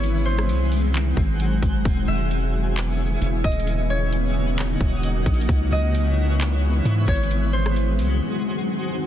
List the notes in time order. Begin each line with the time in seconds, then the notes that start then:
Already playing: G#1 G#3 C#5 D#5
0.03 C4 G#4 F#5, closed hi-hat
0.25 C5
0.39 cross-stick
0.49 C2, closed hi-hat
0.72 open hi-hat
0.94 clap, closed hi-hat
1.17 G#1, kick
1.40 closed hi-hat
1.62 G#1, kick, closed hi-hat
1.85 E1 C#4 E5, kick, closed hi-hat
2.08 E1 E5
2.31 closed hi-hat
2.76 clap, closed hi-hat
3.22 E1, closed hi-hat
3.44 D#1 D#5, kick, closed hi-hat
3.52 closed hi-hat
3.59 closed hi-hat
3.67 C#3 F#4 D#5, closed hi-hat
3.90 C#5
4.13 closed hi-hat
4.58 clap, closed hi-hat
4.81 D#1, kick
5.03 closed hi-hat
5.26 A#1, kick, closed hi-hat
5.34 closed hi-hat
5.41 closed hi-hat
5.48 C#2 G#3 B3 E4 C#5, kick, closed hi-hat
5.72 C#2 D#5
5.95 closed hi-hat
6.40 clap, closed hi-hat
6.85 G#2, closed hi-hat
7.08 G#1 C#5, kick, closed hi-hat
7.16 closed hi-hat
7.23 closed hi-hat
7.31 G#3 F#4 C5, closed hi-hat
7.53 C5
7.66 cross-stick
7.76 closed hi-hat
7.99 C2, open hi-hat